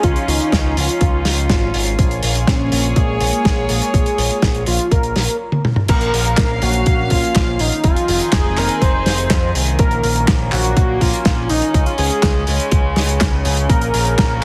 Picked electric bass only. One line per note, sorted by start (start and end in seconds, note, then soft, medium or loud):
0.04 0.14 C#2 medium
0.28 0.38 C#2 medium
0.52 0.73 C#2 medium
0.77 0.87 C#2 medium
1.01 1.22 C#2 medium
1.26 1.46 C#2 loud
1.50 1.71 G#1 loud
1.74 1.95 G#1 medium
1.99 2.19 A#1 loud
2.23 2.44 A#1 medium
2.47 2.68 A#1 medium
2.72 2.93 A#1 medium
2.96 3.17 A#1 medium
3.21 3.31 A#1 loud
3.45 3.66 A#1 loud
3.69 3.80 A#1 medium
3.94 4.04 A#1 medium
4.18 4.29 A#1 medium
4.43 4.63 A#1 medium
4.67 4.77 A#1 medium
4.91 5.12 A#1 medium
5.16 5.26 A#1 medium
5.89 6.10 A#1 loud
6.13 6.34 A#1 medium
6.38 6.59 A#1 medium
6.62 6.83 A#1 loud
6.87 7.07 A#1 medium
7.11 7.21 A#1 loud
7.35 7.56 A#1 loud
7.59 7.70 A#1 medium
7.84 7.95 F1 medium
8.08 8.19 F1 loud
8.33 8.54 F1 medium
8.57 8.68 F1 loud
8.82 9.02 F1 medium
9.06 9.27 F1 loud
9.30 9.51 F2 loud
9.55 9.76 C2 medium
9.79 10.00 A#1 loud
10.04 10.24 A#1 medium
10.52 10.73 A#1 loud
10.77 10.98 A#1 medium
11.01 11.12 A#1 medium
11.26 11.46 A#1 loud
11.50 11.60 A#1 medium
11.74 11.85 C#2 medium
11.99 12.09 C#2 loud
12.23 12.44 C#2 medium
12.48 12.58 C#2 medium
12.72 12.93 C#2 medium
12.96 13.17 C#2 loud
13.21 13.41 C#2 medium
13.45 13.66 C#2 loud
13.69 13.90 A#1 loud
13.94 14.15 A#1 medium
14.18 14.39 A#1 medium